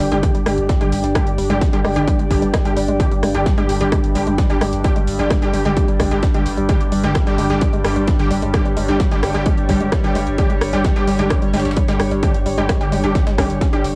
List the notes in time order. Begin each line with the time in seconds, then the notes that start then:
Already playing: G2 G3 D4 G4 C5 D5 G5
0.00 G1 G3, closed hi-hat
0.11 G1 D3 G3 G#3 G4, snare, closed hi-hat
0.23 kick, closed hi-hat
0.35 G1 G3, closed hi-hat
0.46 G1 D3 G3 G#3 G4, cross-stick, closed hi-hat, open hi-hat
0.58 G1, closed hi-hat
0.69 G3, kick, snare, closed hi-hat
0.81 G1 D3 G3 G#3 G4, closed hi-hat
0.92 G1, closed hi-hat, open hi-hat
1.04 G1 G3, closed hi-hat
1.15 D3 G3 G#3 G4, kick, cross-stick, closed hi-hat
1.27 G1, closed hi-hat
1.38 G1 G3, closed hi-hat, open hi-hat
1.50 G1 D3 G3 G#3 G4, closed hi-hat
1.61 kick, snare, closed hi-hat
1.73 G1 D3 G3 G4, snare, closed hi-hat
1.84 G1 G#3, cross-stick, closed hi-hat, open hi-hat
1.96 G1 D3 G3 G4, closed hi-hat
2.08 G3, kick, closed hi-hat
2.19 G1 G#3, closed hi-hat
2.31 G1 D3 G3 G4, kick, snare, closed hi-hat, open hi-hat
2.42 G1 G3, closed hi-hat
2.54 G#3, kick, cross-stick, snare, closed hi-hat
2.65 G1 D3 G3 G4, closed hi-hat
2.77 G1 G3, closed hi-hat, open hi-hat
2.88 G1 G#3, closed hi-hat
3.00 D3 G3 G4, kick, closed hi-hat
3.11 G1 G3, closed hi-hat
3.23 G1 G#3, cross-stick, closed hi-hat, open hi-hat
3.35 G1 D3 G3 G4, closed hi-hat
3.46 G3, kick, snare, closed hi-hat
3.58 G1 D3 G3 G#3 G4, closed hi-hat
3.69 G1, closed hi-hat, open hi-hat
3.81 G1 D3 G3 G4, snare, closed hi-hat
3.92 G#3, kick, cross-stick, closed hi-hat
4.04 G1, closed hi-hat
4.15 G1 D3 G3 G4, closed hi-hat, open hi-hat
4.27 G1 G#3, closed hi-hat
4.38 kick, snare, closed hi-hat
4.50 G1 D3 G3 G4, closed hi-hat
4.61 G1 G#3, cross-stick, closed hi-hat, open hi-hat
4.73 G1, closed hi-hat
4.84 D3 G3 G4, kick, closed hi-hat
4.96 G1 G#3, closed hi-hat
5.07 G1, closed hi-hat, open hi-hat
5.19 G1 D3 G3 G4, closed hi-hat
5.31 G#3, kick, cross-stick, snare, closed hi-hat
5.42 G1 D3 G3 G4, snare, closed hi-hat
5.54 G1 G3, closed hi-hat, open hi-hat
5.65 G1 D3 G3 G#3 G4, closed hi-hat
5.77 kick, closed hi-hat
5.88 G1 G3, closed hi-hat
6.00 G1 G#3, kick, cross-stick, snare, closed hi-hat, open hi-hat
6.11 G1 D3 G3 G4, closed hi-hat
6.23 G3, kick, snare, closed hi-hat
6.34 G1 D3 G3 G#3 G4, closed hi-hat
6.46 G1, closed hi-hat, open hi-hat
6.57 G1 G3, closed hi-hat
6.69 D3 G3 G#3 G4, kick, closed hi-hat
6.81 G1, closed hi-hat
6.92 G1 G3, closed hi-hat, open hi-hat
7.04 G1 D3 G3 G#3 G4, closed hi-hat
7.15 kick, cross-stick, snare, closed hi-hat
7.27 G1 D3 G3 G4, closed hi-hat
7.38 G1 G#3, closed hi-hat, open hi-hat
7.50 G1 D3 G3 G4, snare, closed hi-hat
7.61 G3, kick, closed hi-hat
7.73 G1 G#3, closed hi-hat
7.84 G1 D3 G3 G4, cross-stick, closed hi-hat, open hi-hat
7.90 C#5
7.96 G1 G3, closed hi-hat
8.07 G#3, kick, snare, closed hi-hat
8.19 G1 D3 G3 G4, closed hi-hat
8.30 G1 G3, closed hi-hat, open hi-hat
8.42 G1 G#3, closed hi-hat
8.54 D3 G3 G4, kick, cross-stick, closed hi-hat
8.65 G1 G3, closed hi-hat
8.77 G1 G#3, closed hi-hat, open hi-hat
8.88 G1 D3 G3 G4, closed hi-hat
9.00 G3, kick, snare, closed hi-hat
9.11 G1 D3 G3 G#3 G4, snare, closed hi-hat
9.23 G1, cross-stick, closed hi-hat, open hi-hat
9.34 G1 D3 G3 G4, closed hi-hat
9.46 G#3, kick, closed hi-hat
9.57 G1, closed hi-hat
9.69 G1 D3 G3 G4, kick, snare, closed hi-hat, open hi-hat
9.81 G1 G#3, closed hi-hat
9.92 kick, cross-stick, snare, closed hi-hat
10.04 G1 D3 G3 G4, closed hi-hat
10.15 G1 G#3, closed hi-hat, open hi-hat
10.27 G1, closed hi-hat
10.38 D3 G3 G4, kick, closed hi-hat
10.50 G1 G#3, closed hi-hat
10.61 G1, cross-stick, closed hi-hat, open hi-hat
10.73 G1 D3 G3 G4, closed hi-hat
10.84 G#3, kick, snare, closed hi-hat
10.96 G1 D3 G3 G4, closed hi-hat
11.07 G1 G3, closed hi-hat, open hi-hat
11.19 G1 D3 G3 G#3 G4, snare, closed hi-hat
11.30 kick, cross-stick, closed hi-hat
11.42 G1 G3, closed hi-hat
11.54 G1 D3 G3 G#3 G4, snare, closed hi-hat, open hi-hat
11.60 snare, closed hi-hat
11.65 G1, snare, closed hi-hat
11.71 snare, closed hi-hat
11.77 G3, kick, closed hi-hat
11.88 G1 D3 G3 G#3 G4, snare, closed hi-hat
12.00 G1, cross-stick, open hi-hat
12.11 G1 G3, closed hi-hat
12.23 D3 G3 G#3 G4, kick, closed hi-hat
12.34 G1, closed hi-hat
12.46 G1 G3, closed hi-hat, open hi-hat
12.58 G1 D3 G3 G#3 G4, closed hi-hat
12.69 kick, cross-stick, snare, closed hi-hat
12.81 G1 D3 G3 G4, closed hi-hat
12.92 G1 G#3, closed hi-hat, open hi-hat
13.04 G1 D3 G3 G4, closed hi-hat
13.15 G3, kick, snare, closed hi-hat
13.27 G1 G#3, snare, closed hi-hat
13.38 G1 D3 G3 C#4 G4, kick, cross-stick, snare, closed hi-hat, open hi-hat
13.50 G1, snare, closed hi-hat
13.61 C#4, kick, snare, closed hi-hat
13.73 G1 D3 G3 G4, closed hi-hat
13.84 G1, closed hi-hat, open hi-hat